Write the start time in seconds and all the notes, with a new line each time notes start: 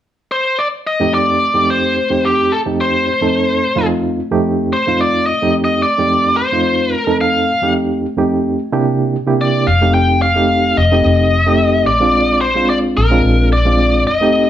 0.32 C5
0.59 D5
0.87 D#5
1.00 F2 A3 C4 D#4 G4
1.14 D5
1.53 F2 A3 C4 D#4 G4
1.70 C5
2.10 F2 A3 C4 D#4 G4
2.25 G4
2.52 A4
2.66 F2 A3 C4 D#4 G4
2.81 C5
3.21 F2 A3 C4 D#4 A4
3.76 F2 A3 C4 D#4 F4
4.31 F2 A3 C4 D#4 G4
4.73 C5
4.87 F2 A3 C4 D#4 F4
5.01 D5
5.26 D#5
5.42 F2 A3 C4 D#4 G4
5.65 D#5
5.83 D5
5.98 F2 A3 C4 D#4 G4
6.37 C5
6.52 F2 A3 C4 D#4 F4
6.94 A#4
7.07 F2 A3 C4 D#4 A4
7.21 F5
7.62 F2 A3 C4 D#4 G4
8.17 F2 A3 C4 D#4 G4
8.72 C3 A#3 D4 E4 G4
9.27 C3 A#3 D4 E4 G4
9.41 D5
9.67 F1 F5
9.81 A3 C4 D#4 G4
9.94 G5
10.22 F5
10.36 A3 C4 D#4 G4
10.77 F1 D#5
10.92 A3 C4 D#4 G4
11.05 F1
11.47 A3 C4 D#4 G4
11.87 A#1 D5
12.00 G#3 C4 D4 F4
12.41 C5
12.55 G#3 C4 D4 F4
12.70 D5
12.97 A#1 A#4
13.10 G#3 C4 D4 F4
13.25 A#1
13.53 D5
13.65 G#3 C4 D4 F4
14.07 F1 D#5
14.21 A3 C4 D#4 G4